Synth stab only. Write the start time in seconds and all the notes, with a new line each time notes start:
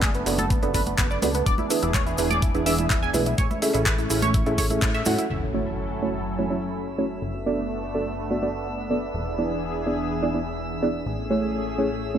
Already playing: B3 D4 F#4 A4 D5
0.26 B3 D4 F#4 A4 D5
0.63 B3 D4 F#4 A4 D5
0.74 B3 D4 F#4 A4 D5
1.22 B3 D4 F#4 A4 D5
1.70 D4 E4 G#4 B4 E5
2.18 D4 E4 G#4 B4 E5
2.55 D4 E4 G#4 B4 E5
2.66 D4 E4 G#4 B4 E5
3.14 D4 E4 G#4 B4 E5
3.62 C#4 E4 G#4 A4 E5
4.10 C#4 E4 G#4 A4 E5
4.46 C#4 E4 G#4 A4 E5
4.58 C#4 E4 G#4 A4 E5
4.71 C#4 E4 G#4 A4 E5
5.06 C#4 E4 F#4 A4 F#5
5.54 A3 C#4 E4 F#4 C#5
6.02 A3 C#4 E4 F#4 C#5
6.39 A3 C#4 E4 F#4 C#5
6.50 A3 C#4 E4 F#4 C#5
6.98 A3 C#4 E4 F#4 C#5
7.46 B3 D4 F#4 A4 D5
7.94 B3 D4 F#4 A4 D5
8.31 B3 D4 F#4 A4 D5
8.43 B3 D4 F#4 A4 D5
8.90 B3 D4 F#4 A4 D5
9.38 B3 D4 E4 G#4 D5
9.86 B3 D4 E4 G#4 D5
10.23 B3 D4 E4 G#4 D5
10.34 B3 D4 E4 G#4 D5
10.82 B3 D4 E4 G#4 D5
11.30 A3 C#4 E4 G#4 C#5
11.78 A3 C#4 E4 G#4 C#5
12.14 A3 C#4 E4 G#4 C#5